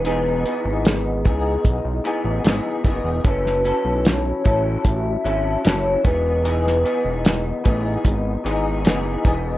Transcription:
<<
  \new Staff \with { instrumentName = "Soft synth lead" } { \time 4/4 \key e \major \tempo 4 = 75 b'4 gis'2~ gis'8 r8 | b'4 cis''4 e''4 cis''8 b'8~ | b'4. r2 r8 | }
  \new Staff \with { instrumentName = "Clean electric guitar" } { \time 4/4 \key e \major <e b dis' gis'>8 <e b dis' gis'>4 <e b dis' gis'>4 <e b dis' gis'>8 <e b dis' gis'>8 <e b dis' gis'>8 | <fis cis' e' a'>8 <fis cis' e' a'>4 <fis cis' e' a'>4 <fis cis' e' a'>8 <fis cis' e' a'>8 <e b dis' gis'>8 | <e b dis' gis'>8 <e b dis' gis'>4 <e b dis' gis'>4 <e b dis' gis'>8 <e b dis' gis'>8 <e b dis' gis'>8 | }
  \new Staff \with { instrumentName = "Analog synth bass" } { \clef bass \time 4/4 \key e \major e,,8. gis,,8. cis,8 b,,16 b,,16 r16 a,,16 gis,,16 r16 fis,,16 e,,16 | fis,,8. b,,8. a,,8 a,,8 gis,,8 fis,,8 e,,8~ | e,,8. e,,8. a,,8 gis,,8 gis,,8 fis,,8 e,,8 | }
  \new DrumStaff \with { instrumentName = "Drums" } \drummode { \time 4/4 hh8 hh8 <hh sn>8 <hh bd>8 <hh bd>8 hh8 <hh sn>8 <hh bd>8 | <hh bd>16 sn16 hh8 <hh sn>8 <hh bd>8 <hh bd>8 hh8 <hh sn>8 <hh bd>8 | hh16 sn16 hh8 <hh sn>8 <hh bd>8 <hh bd>8 hh8 <hh sn>8 <hh bd>8 | }
>>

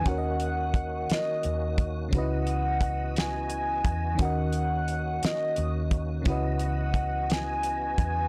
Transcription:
<<
  \new Staff \with { instrumentName = "Soft synth lead" } { \time 6/8 \key cis \dorian \tempo 4. = 58 fis''4. dis''4 r8 | fis''4. gis''4. | fis''4. dis''4 r8 | fis''4. gis''4. | }
  \new Staff \with { instrumentName = "FM electric piano" } { \time 6/8 \key cis \dorian <dis cis' fis' ais' cis'' dis''>2. | <cis cis' dis' e' fis' b' dis''>2. | <dis cis' fis' ais' dis''>2. | <cis cis' e' fis' b' dis''>2. | }
  \new Staff \with { instrumentName = "Tonewheel organ" } { \time 6/8 \key cis \dorian fis'2.~ | fis'2.~ | fis'2.~ | fis'2. | }
  \new Staff \with { instrumentName = "Tonewheel organ" } { \time 6/8 \key cis \dorian <dis ais cis'>2. | <e b dis''>2. | <dis ais cis'>2. | <e b dis''>2. | }
  \new Staff \with { instrumentName = "Fingered electric bass" } { \clef bass \time 6/8 \key cis \dorian dis,4. r8 dis,4 | cis,2~ cis,8 e,8 | dis,4. r8 dis,4 | cis,2~ cis,8 e,8 | }
  \new DrumStaff \with { instrumentName = "Drums" } \drummode { \time 6/8 <hh bd>8 hh8 <hh bd>8 <hh sn>8 hh8 <hh bd>8 | <hh bd>8 hh8 <hh bd>8 <hh sn>8 hh8 <hh bd>8 | <hh bd>8 hh8 hh8 <hh sn>8 hh8 <hh bd>8 | <hh bd>8 hh8 <hh bd>8 <hh sn>8 hh8 <hh bd>8 | }
>>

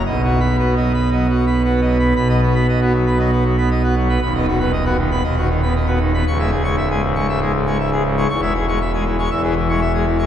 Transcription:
<<
  \new Staff \with { instrumentName = "Pipe organ" } { \time 4/4 \key b \major \tempo 4 = 117 \tuplet 3/2 { dis''8 fis'8 b''8 fis'8 dis''8 b''8 dis''8 fis'8 b''8 fis'8 dis''8 b''8 } | b''16 dis''16 fis'16 b''16 dis''16 fis'16 fis16 b''16 dis''16 fis'16 fis16 b''16 dis''16 fis'16 fis16 b''16 | b''16 dis''16 fis'16 b''16 dis''16 fis'16 dis16 b''16 dis''16 fis'16 dis16 b''16 dis''16 fis'16 dis16 b''16 | cis'''16 e''16 gis'16 cis'''16 e''16 gis'16 gis,16 cis'''16 e''16 gis'16 gis,16 cis'''16 e''16 gis'16 gis,16 cis'''16 |
cis'''16 e''16 gis'16 cis'''16 e''16 gis'16 e16 cis'''16 e''16 gis'16 e16 cis'''16 e''16 gis'16 e16 cis'''16 | }
  \new Staff \with { instrumentName = "Pipe organ" } { \clef bass \time 4/4 \key b \major << { b,4 \tuplet 3/2 { b8 fis8 r8 } fis16 r8. \tuplet 3/2 { b8 fis8 r8 } | b,16 b16 r16 b16 r16 b16 r16 b16 fis16 b16 r16 b16 r16 b16 r16 b16 | dis,16 b16 r16 b16 r16 b16 r16 b16 dis,16 dis16 r16 b16 r16 b16 r16 b16 | cis,16 gis16 r16 gis16 r16 gis16 r16 gis16 gis,16 gis16 r16 gis16 r16 gis16 r16 gis16 |
e,16 gis16 r16 gis16 r16 gis16 r16 gis16 e,16 e16 r16 gis16 r16 gis16 r16 gis16 | } \\ { b,,1 | b,,1 | dis,,2 dis,,2 | cis,,1 |
e,,2 e,,2 | } >> }
>>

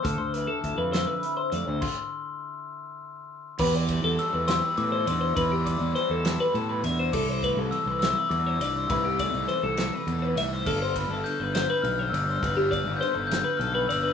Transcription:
<<
  \new Staff \with { instrumentName = "Glockenspiel" } { \time 6/8 \key c \major \tempo 4. = 68 f'''4. e'''4 r8 | c'''2 r4 | d'''4 e'''8 e'''8 d'''8 c'''8 | b''2 r4 |
d'''4 e'''8 e'''8 d'''8 d'''8 | e'''2 r4 | f'''4 g'''8 g'''8 f'''8 e'''8 | f'''4 g'''8 g'''8 f'''8 e'''8 | }
  \new Staff \with { instrumentName = "Clean electric guitar" } { \time 6/8 \key c \major a'16 c''16 b'16 a'8 b'16 c''16 b'8 c''16 d''16 c''16 | r2. | b'16 d''16 b'16 a'8 b'16 c''16 b'8 c''16 d''16 c''16 | b'16 g'16 d''8 c''16 a'8 b'16 a'16 b'16 e''16 c''16 |
a'16 c''16 b'16 a'8 b'16 c''16 b'8 c''16 d''16 c''16 | b'16 g'16 d''8 c''16 a'8 b'16 a'16 b'16 e''16 c''16 | a'16 c''16 b'16 a'8 b'16 c''16 b'8 c''16 d''16 c''16 | b'16 g'16 d''8 c''16 a'8 b'16 a'16 b'16 d''16 b'16 | }
  \new Staff \with { instrumentName = "Clean electric guitar" } { \time 6/8 \key c \major << { e'8 e'8 e'8 c'8 e'4~ | e'2. | g'8 g4 g'4 d'8 | e'16 g'16 g4 g'4 d'8 |
e'8 a4 e'4 d'8 | e'8 a2~ a8 | f'8 b4 f'4 d'8 | f'8 b4 f'4 b16 d'16 | } \\ { d2~ d8 a8 | r2. | e,4 e4 b,4 | e,4 e4 b,4 |
c4 e4 g,4 | c4 e8 c8 b,8 a,8 | g,4 d4 g,4 | g,4 d4 g,4 | } >> }
  \new Staff \with { instrumentName = "Fingered electric bass" } { \clef bass \time 6/8 \key c \major d,16 d,8 r16 d,16 f,8 r8. f,16 d,16 | r2. | e,8. e,16 r16 e,8 r16 a,8 e,8 | e,8. e,16 r16 e,8 r16 a,8 e,8 |
c,8. c,16 r16 c,8 r16 e,8 c,8 | c,8. c,16 r16 c,8 r16 e,8 c,8 | g,,8. g,,16 r16 g,,8 r16 b,,8 g,,8 | g,,8. g,,16 r16 g,,8 r16 b,,8 g,,8 | }
  \new DrumStaff \with { instrumentName = "Drums" } \drummode { \time 6/8 <hh bd>8 hh8 <hh bd>8 <hh sn>8 hh8 hh8 | <cymc bd>4. r4. | <cymc bd>8 <bd cymr>8 cymr8 <cymr sn>8 cymr8 cymr8 | <bd cymr>8 <bd cymr>8 cymr8 <cymr sn>8 cymr8 cymr8 |
<cymc bd>8 <bd cymr>8 cymr8 <cymr sn>8 cymr8 cymr8 | <bd cymr>8 <bd cymr>8 cymr8 <cymr sn>8 cymr8 cymr8 | <cymc bd>8 <bd cymr>8 cymr8 <cymr sn>8 cymr8 cymr8 | <bd cymr>8 <bd cymr>8 cymr8 <cymr sn>8 cymr8 cymr8 | }
>>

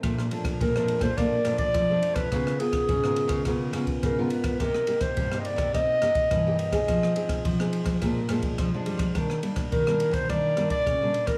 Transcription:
<<
  \new Staff \with { instrumentName = "Clarinet" } { \time 4/4 \key bes \major \tempo 4 = 105 r4 bes'8. c''16 d''8. d''4 ces''16~ | ces''8 aes'2 r8 bes'8 ces''8 | bes'8. c''8~ c''32 ees''32 d''8 ees''4. ees''8~ | ees''4. r2 r8 |
r4 bes'8. c''16 d''8. d''4 bes'16 | }
  \new Staff \with { instrumentName = "Nylon-string guitar" } { \time 4/4 \key bes \major << { <f a d'>16 r16 <f a d'>8 r16 <f a d'>8 <f a d'>16 <f a d'>16 r16 <f a d'>8. <f a d'>8. | <ces' f' bes'>8 <ces' f' bes'>8 r16 <ces' f' bes'>8. <ces' f' bes'>8 <ces' f' bes'>8. <ces' f' bes'>8. | <bes ees' g'>8 <bes ees' g'>8 r16 <bes ees' g'>8. <bes ees' g'>16 r16 <bes ees' g'>8. <bes ees' g'>8 <c' ees' aes'>16~ | <c' ees' aes'>8 <c' ees' aes'>8 r16 <c' ees' aes'>8. <f aes d'>16 r16 <f aes d'>8. <f aes d'>8. |
<g bes d'>8 <g bes d'>8. <g bes d'>8. <g bes d'>8 <g bes d'>8 r16 <g bes d'>8. | } \\ { bes,4 f,4 bes,4 f,4 | des4 aes,4 des4 aes,4 | c4 g,4 c4 g,4 | f4 c4 bes,4 f,4 |
ees4 bes,4 ees4 bes,4 | } >> }
  \new Staff \with { instrumentName = "Nylon-string guitar" } { \clef bass \time 4/4 \key bes \major bes,8 r8 bes,8. bes,16 bes8 bes,16 r16 f8 r8 | des8 r8 des8. des16 des8 des16 r16 des8 r8 | c8 r8 c8. c16 c'8 c16 r16 e8 r8 | f8 r8 f8. f16 bes,8 bes,16 r16 f16 aes16 g16 f16 |
ees8 r8 ees8. ees16 ees8 ees16 r16 des8 r8 | }
  \new DrumStaff \with { instrumentName = "Drums" } \drummode { \time 4/4 <bd cymr ss>16 ss16 cymr16 <bd cymr ss>16 <bd cymr>16 ss16 cymr16 <bd cymr ss>16 <bd cymr ss>8 <cymr ss>16 <bd cymr>16 <bd cymr ss>8 cymr16 <bd cymr ss>16 | <bd cymr ss>16 ss16 cymr16 <bd cymr ss>16 <bd cymr>16 ss16 cymr16 <bd cymr ss>16 <bd cymr ss>8 <cymr ss>16 <bd cymr>16 <bd cymr ss>8 cymr16 <bd cymr ss>16 | <bd cymr ss>16 ss16 cymr16 <bd cymr ss>16 <bd cymr>16 ss16 cymr16 <bd cymr ss>16 <bd cymr ss>8 <cymr ss>16 <bd cymr>16 <bd cymr ss>8 cymr16 <bd cymr ss>16 | <bd cymr ss>16 ss16 cymr16 <bd cymr ss>16 <bd cymr>16 ss16 cymr16 <bd cymr ss>16 <bd cymr ss>8 <cymr ss>16 <bd cymr>16 <bd cymr ss>8 cymr16 <bd cymr ss>16 |
<bd cymr ss>16 ss16 cymr16 <bd cymr ss>16 <bd cymr>16 ss16 cymr16 <bd cymr ss>16 <bd cymr ss>8 <cymr ss>16 <bd cymr>16 <bd cymr ss>8 cymr16 <bd cymr ss>16 | }
>>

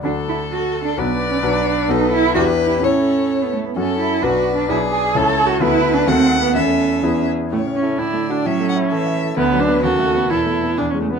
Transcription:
<<
  \new Staff \with { instrumentName = "Violin" } { \time 2/4 \key d \major \tempo 4 = 128 a'2 | d''2 | b'4 b'4 | cis''4. r8 |
\key a \major a'4 b'4 | gis'4 a'4 | b'4 fis''4 | e''4. r8 |
cis''4 d''4 | e''8 fis''8 e''4 | b'4 a'4 | a'4 gis'8 r8 | }
  \new Staff \with { instrumentName = "Viola" } { \time 2/4 \key d \major a'2 | b'2 | a'4 g'4 | a'4. r8 |
\key a \major a'4 d''4~ | d''4 cis''4 | b'4 fis''4 | a'4 gis'8 r8 |
a8 cis'8 \tuplet 3/2 { e'4 d'8 } | cis'4. r8 | b8 d'8 fis'4 | e'4 d'16 cis'16 a16 b16 | }
  \new Staff \with { instrumentName = "Grand piano" } { \time 2/4 \key d \major <d, d' fis' a'>2 | <b,, d' fis' b'>4 <b,, d' fis' b'>4 | <b,, b fis' a'>4 <e, d' e' g'>4 | <a, cis' e' a'>2 |
\key a \major <fis, cis' fis' a'>4 <b,, d' fis' b'>4 | <b,, d' gis' b'>4 <cis, cis' e' a'>4 | <d, b fis' a'>4 <dis, a fis' a'>4 | <e, a e' a'>4 <e, b e' gis'>4 |
\tuplet 3/2 { a,8 cis'8 <e' a'>8 a,8 a8 <fis' a'>8 } | \tuplet 3/2 { a,8 a8 e'8 a'8 e''8 a'8 } | \tuplet 3/2 { d,8 fis8 <b b'>8 dis,8 a8 <b b'>8 } | \tuplet 3/2 { e,8 a8 <b b'>8 e,8 gis8 <b b'>8 } | }
  \new Staff \with { instrumentName = "Cello" } { \time 2/4 \key d \major d'8 e'8 \tuplet 3/2 { fis'4 d'8 } | \tuplet 3/2 { b4 cis'8 } d'4 | dis'8 e'8 \tuplet 3/2 { fis'4 e'8 } | cis'4~ cis'16 b16 a16 b16 |
\key a \major cis'8 e'8 \tuplet 3/2 { fis'4 d'8 } | e'8 gis'8 \tuplet 3/2 { a'4 fis'8 } | \tuplet 3/2 { e'4 d'8 bis4 b8 } | cis'4. r8 |
cis4 d4 | fis4 e4 | d4 cis4 | b,4 b,8 cis8 | }
>>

